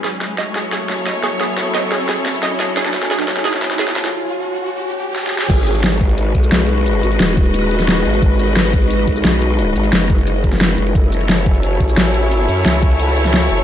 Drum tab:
CC |------------------------------------------------|------------------------------------------------|------------------------------------------------|------------------------------------------------|
HH |x-----x-----x-----x-----x-----x-----x-----x--x--|x-----x-----x-----x-----x-----x-----x-----x--x--|x-----x-----x-----x-----x-----x-----x-----x--x--|------------------------------------------------|
SH |x-----x-----x-----------x--------x--x-----------|x-----x-----x-----------x--------x--x-----------|x-----x-----x-----------x--------x--x-----------|------------------------------------------------|
SD |o-----o-----o-----o-----o-----o-----o-----o-----|o-----o-----o-----o-----o-----o-----o-----o-----|o--o--o--o--o--o--o--o--o--o--o--o--o--o--o--o--|------------------------------------o---o---o---|
BD |------------------------------------------------|------------------------------------------------|------------------------------------------------|------------------------------------------------|

CC |x-----------------------------------------------|------------------------------------------------|------------------------------------------------|------------------------------------------------|
HH |x-----x--x--x-----x--x--x-----x-----x-----x--x--|x-----x--x--x-----x--x--x-----x-----x-----x--x--|x-----x--x--x-----x--x--x-----x-----x-----x--x--|x-----x--x--x-----x--x--x-----x-----x-----x--x--|
SH |x-----x-----x-----------x--------x--x-----------|x-----x-----x-----------x--------x--x-----------|x-----x-----x-----------x--------x--x-----------|x-----x-----x-----------x--------x--x-----------|
SD |------------o-----------------------o-----------|------------o--------------------o--o-----------|------------o-----------------------o-----------|------------o--------------------o--o-----------|
BD |o-----------------o-----------o-----------------|------------------o-----------------------------|o-----------------o-----------o-----------------|------------------o-----------o-----------------|

CC |------------------------------------------------|------------------------------------------------|
HH |x-----x--x--x-----x--x--x-----x-----x-----x--x--|x-----x--x--x-----x--x--x-----x-----x-----x--x--|
SH |x-----x-----x-----------x--------x--x-----------|x-----x-----x-----------x--------x--x-----------|
SD |------------o-----------------------o-----------|------------o--------------------o--o-----------|
BD |o-----------------o-----------o-----------------|------------------o-----------------------------|